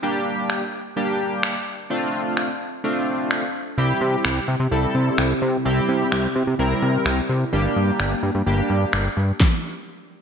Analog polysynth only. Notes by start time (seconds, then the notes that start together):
0.02 G3 A#3 D4 G4
0.96 G3 A#3 D4 G4
1.90 A3 C4 D4 F4
2.84 A3 C4 D4 F4
3.78 G3 C4 E4 G4
4.71 G3 C4 E4 A4
5.65 G3 C4 E4 G4
6.59 G3 C4 E4 A#4
7.53 G3 A#3 D4 G4
8.46 G3 A#3 D4 G4